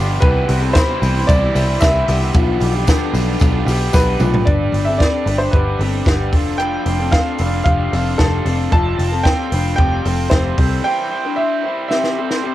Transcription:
Already playing: G1 B2 D3 F3 G3 B3 F4 G4 B4
0.00 D4
0.20 C2 C3 E3 G3 B3 C4 E4 G4 B4, kick, hi-hat pedal, ride
0.48 C2 G3 C4 E4 B4, open hi-hat, tambourine
0.62 C4 A4
0.73 G3 C4 E4 C5 B5, kick, snare, hi-hat pedal, ride, tambourine
0.78 B4
1.02 C2 G3 C4 E4 B4, open hi-hat, tambourine
1.27 C2 C3 E3 G3 C4 E4 B4 D5, kick, hi-hat pedal, ride, tambourine
1.54 C2 G3 C4 E4 B4 C5, open hi-hat, tambourine
1.80 C2 G3 C4 E4 B4 E5, kick, snare, hi-hat pedal, ride, tambourine
2.06 C2 G3 B3 C4 E4 G4 B4, open hi-hat, tambourine
2.33 B1 B2 D3 F3 B3 D4 F4 G4 B4, kick, hi-hat pedal, ride, tambourine
2.60 B1 D4 G4 B4, open hi-hat, tambourine
2.65 B3
2.75 B3 G4
2.87 B3 D4 G4 A4 B4, kick, snare, hi-hat pedal, ride, tambourine
3.14 B1 B3 D4 G4 B4, open hi-hat, tambourine
3.39 B1 B2 F3 B3 D4 G4 B4, kick, hi-hat pedal, ride, tambourine
3.66 B1 B3 D4 G4 B4, open hi-hat, tambourine
3.93 B1 B3 D4 G4 B4, kick, snare, tambourine
4.20 B1 A3 B3 D4 F4 G4 B4, mid tom, tambourine
4.34 floor tom
4.45 G1 G3 D4 G4 B4 D5, kick, closed hi-hat
4.72 G1 G4 B4, open hi-hat
4.77 D4
4.85 C4 A4 E5
4.98 G3 D4 G4 D5, kick, snare, closed hi-hat
5.02 B4
5.25 G1 D4 G4 B4, open hi-hat
5.38 C5
5.51 G1 G3 B3 D4 G4 B4, kick, closed hi-hat
5.79 G1 C4 D4 G4 A4 B4, open hi-hat
6.06 G1 G3 B3 D4 G4 B4, kick, snare, closed hi-hat
6.32 F1 D4 F4 A4, kick, open hi-hat
6.58 F3 A3 D4 F4 A4 B4 G5, closed hi-hat
6.85 F1 D4 F4 A4, open hi-hat
7.00 C4 A4
7.11 A3 D4 F4 A4 F5, kick, snare, closed hi-hat
7.38 F1 D4 F4 A4 B4, open hi-hat
7.43 D4
7.64 F1 F3 A3 D4 F4 G4 A4 F5, kick, closed hi-hat
7.92 F1 C4 D4 F4 A4, open hi-hat
8.18 F1 A3 D4 F4 G4 A4, kick, snare, closed hi-hat
8.45 F1 C4 D4 F4 A4, open hi-hat
8.71 F1 F3 G3 C4 F4 A4 B4 A5, kick, closed hi-hat
8.99 F1 C4 F4 A4, open hi-hat
9.12 C4 A4
9.23 G3 C4 F4 G5, kick, snare, closed hi-hat
9.28 A4
9.52 F1 C4 D4 F4 A4 B4, open hi-hat
9.76 F1 F3 G3 C4 F4 G4 A4 G5, kick, closed hi-hat
10.04 F1 C4 F4 A4, open hi-hat
10.30 F1 G3 C4 F4 G4 A4 C5, kick, snare, closed hi-hat
10.58 C2 G3 C4 E4 A4 C5, kick, open hi-hat
10.84 C3 E3 G3 C4 E4 C5 G5
11.10 G3 C4 E4 C5
11.25 D4 B4
11.36 G3 C4 E4 E5
11.41 C5
11.64 C4 E4 C5
11.68 G3
11.88 C3 E3 G3 C4 G4 E5, snare
11.93 E4 C5
12.04 snare
12.17 G3 C4 E4 A4 C5
12.31 snare
12.43 G3 C4 E4 G4 C5

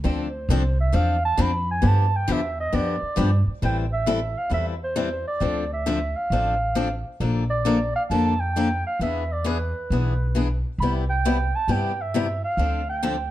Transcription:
0.04 D2 D3 F3 C4 D4 A4
0.08 C5
0.49 C2 D3 F3 C4 D4 A4
0.80 E5
0.92 E2 D3 F3 C4 D4 A4 F5
1.25 A5
1.37 F2 D3 F3 C4 D4 A4 B5
1.71 G#5
1.82 G2 D3 F3 B3 D4 G4
1.87 A5
2.16 G5
2.28 E2 D3 F3 B3 D4 G4
2.32 E5
2.60 D#5
2.72 F2 D3 F3 B3 D4 G4 D5
3.02 muted upright bass stroke
3.16 G2 D3 F3 B3 D4 G4
3.47 muted upright bass stroke
3.62 A1 E3 G3 C4 E4 A4 G5
3.93 E5
4.06 E3 G3 C4 E4 A4
4.38 F5
4.50 E2 E3 G3 C4 E4 A4
4.54 E5
4.84 C5
4.96 E3 G3 C4 E4 A4
5.28 D5
5.40 D2 D3 F3 C4 D4 A4
5.73 E5
5.86 D3 F3 C4 D4 A4
6.16 F5
6.30 A1 D3 F3 C4 D4 A4
6.75 D3 F3 C4 D4 A4
7.20 A#1 D3 F3 A#3 D4 A4
7.50 D5
7.65 D3 F3 A#3 D4 A4
7.96 F5
8.10 F2 D3 F3 A#3 D4 A4 A5
8.40 G5
8.56 D3 F3 A#3 D4 A4
8.87 F5
9.00 E2 E3 B3 D4 G#4 E5
9.32 D5
9.44 E3 B3 D4 G#4 B4
9.90 B1 E3 B3 D4 G#4
10.35 E3 B3 D4 G#4
10.78 C2 C3 G3 B5
10.82 B3 E4 G4
11.10 G5
11.25 C3 G3 B3 E4 G4
11.55 A5
11.68 G2 C3 G3 B3 E4 G4
11.72 G5
12.01 E5
12.14 C3 G3 B3 E4 G4
12.44 F5
12.57 D2 D3 F3 C4 D4 A4
12.89 G5
13.03 D3 F3 C4 D4 A4

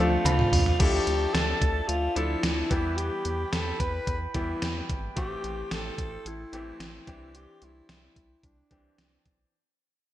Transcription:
Already playing: D2 F3 C4 F4 G4 D5 A5
0.00 A3 C4 D4 A4
0.25 D2 B5, closed hi-hat, mid tom, cowbell
0.39 mid tom
0.52 C#2, floor tom, open hi-hat
0.66 floor tom
0.79 D2 F3 D4 E4 G4 A4 D5 E5 A5, kick, closed hi-hat, crash
1.07 D2, closed hi-hat
1.34 D2 A4, snare, closed hi-hat
1.61 D2, kick, closed hi-hat
1.88 D2 F4, closed hi-hat
2.15 D2 F3 D4 E4 A4, closed hi-hat
2.43 D2, snare, closed hi-hat
2.70 E2 E3 G3 B3 E4 G4 B4 G5 B5, kick, closed hi-hat
2.97 G4, closed hi-hat
3.25 E2, closed hi-hat
3.53 E2 A4, snare, closed hi-hat
3.80 E2 B4, kick, closed hi-hat
4.07 E2, kick, closed hi-hat
4.34 E2 E3 G3 B3 E4 G4, kick, closed hi-hat
4.62 E2, snare, closed hi-hat
4.89 G#1, kick, closed hi-hat
5.16 A1 E3 A3 C4 G4 A4 C6, kick, closed hi-hat
5.44 A1, closed hi-hat
5.71 A1 A4, snare, closed hi-hat
5.98 A1, kick, closed hi-hat
6.25 A1 E4, closed hi-hat
6.53 A1 E3 A3 C4 E4 G4, closed hi-hat
6.80 A1, snare, closed hi-hat
7.07 C2 E3 C4 D4 G4 D5, kick, closed hi-hat
7.35 G4, closed hi-hat
7.62 C2 E4, closed hi-hat
7.89 C2 E4, snare, closed hi-hat
8.16 C2, kick, closed hi-hat
8.43 C2 D4, kick, closed hi-hat
8.71 C2 E3 C4 D4 G4, kick, closed hi-hat
8.98 C2, snare, closed hi-hat
9.25 B1, kick, closed hi-hat

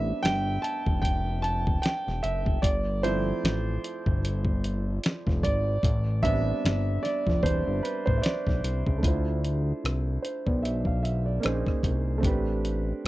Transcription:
Already playing: A1 G3 B3 C4 D4 E5
0.23 G1 G5, snare, closed hi-hat
0.62 A5, closed hi-hat
0.86 F1, kick
1.02 G5, kick, closed hi-hat
1.42 A5, closed hi-hat
1.67 kick
1.82 G5, snare, closed hi-hat
2.08 E1, snare
2.23 F#1 E5, closed hi-hat
2.46 kick
2.62 G1 D5, kick, closed hi-hat
3.03 F3 A3 C4 E4 C5, closed hi-hat
3.44 A1, snare, closed hi-hat
3.84 closed hi-hat
4.06 G1, kick
4.25 closed hi-hat
4.45 kick
4.64 closed hi-hat
5.04 snare, closed hi-hat
5.27 F1, kick, snare
5.43 G#1 D5, kick, closed hi-hat
5.83 A1, kick, closed hi-hat
6.23 G3 B3 C4 D4 E5, kick, closed hi-hat
6.65 G1, snare, closed hi-hat
7.03 D5, snare, closed hi-hat
7.27 F1, kick, snare
7.43 E1 G3 C4 D4 B4 C5, kick, closed hi-hat
7.67 G1
7.83 B4, closed hi-hat
8.06 A1 C5, kick
8.17 E5
8.22 D5, snare, closed hi-hat
8.47 B1, kick, snare
8.64 C2, closed hi-hat
8.87 C#2, kick
8.98 A3 D4
9.03 D2 E4 F4, kick, closed hi-hat
9.07 C5
9.45 closed hi-hat
9.84 C2, cross-stick, closed hi-hat
10.22 C5, closed hi-hat
10.46 B1 D5, kick
10.63 E5, closed hi-hat
10.85 F5, kick
11.03 E5, closed hi-hat
11.26 D5
11.40 A#3 C#4 D#4 G#4, closed hi-hat
11.45 A#1 C5, cross-stick
11.67 C2, kick, cross-stick
11.83 C2, kick, closed hi-hat
12.18 A3 C4
12.23 A1 D4 G4, kick, closed hi-hat
12.27 B4
12.65 closed hi-hat
13.05 G1

